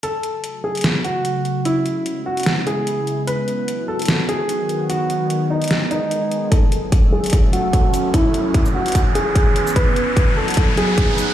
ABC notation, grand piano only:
X:1
M:4/4
L:1/8
Q:"Swing 16ths" 1/4=148
K:F#dor
V:1 name="Grand piano"
A3 G z F3 | E3 F z G3 | B3 A z G3 | F3 D z D3 |
A3 G z F3 | E3 F z G3 | B3 A z G3 |]